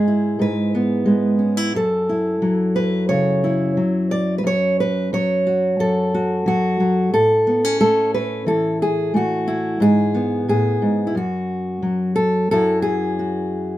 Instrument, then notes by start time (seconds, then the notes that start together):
steel-string acoustic guitar
Already playing: G#2 G#3 G#4
0.08 E4
0.39 G#2 B4
0.75 B3
1.06 G#3
1.39 C#4
1.57 E4
1.75 F#2 A4
2.09 E4
2.42 F#3
2.76 B4
3.09 C#3 C#5
3.44 E4
3.77 F#3
4.11 D5
4.38 B4
4.44 F#2 C#5
4.80 B4
5.13 F#3 C#5
5.47 F#4
5.80 F#2 A4
6.14 F#4
6.46 F#3 F#4
6.80 F#3
7.13 A2 A4
7.47 B3
7.65 C#4
7.81 A3 A4
8.14 B4
8.46 E3 A4
8.82 G#4
9.14 A3 F#4
9.48 E4
9.80 G#2 G#4
10.14 B3
10.48 A2 G#4
10.82 G#2
11.07 E4
11.15 F#2 F#4
11.82 F#3
12.16 A4
12.51 F#2 F#3 E4 F#4 A4
12.82 G#4
13.19 F#4